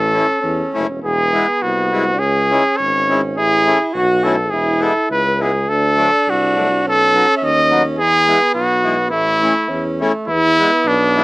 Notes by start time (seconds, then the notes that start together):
Already playing: A1 C#4 A4
0.14 A3 C#4 E4
0.41 E2 C#4
0.74 F#1 A3 C#4 E4
0.89 E1
1.02 E1 B3 G#4
1.33 G#3 B3 E4
1.62 C2 F#4
1.92 G#3 B3 E4
2.14 D4
2.19 C#2 C#4 G#4
2.50 G#3 C#4 E4
2.77 G#1 C#5
3.09 G#3 C#4 E4
3.37 A1 E4 G#4
3.65 A3 C#4 E4
3.93 B1 F#4
4.24 A3 C#4 E4 A4
4.50 E1 E4 G#4
4.79 G#3 B3 E4 A4
5.11 C#2 B4
5.39 G#3 B3 E4 G#4
5.68 D2 D4 A4
5.97 F#3 A3 D4
6.27 C2 F#4
6.55 F#3 A3 D4
6.85 B1 C#4 A4
7.14 F#3 B3 D#4
7.37 E5
7.42 D#2 D#5
7.70 F#3 B3 D#4
7.98 E2 B3 G#4
8.27 G#3 B3 E4
8.55 B1 F#4
8.84 G#3 B3 E4
9.11 A1 A3 E4
9.42 A3 C#4 E4
9.69 E2 C#4
10.00 A3 C#4 E4
10.27 E2 B3 E4
10.59 G#3 B3 E4
10.85 B1 D4
11.16 G#3 B3 E4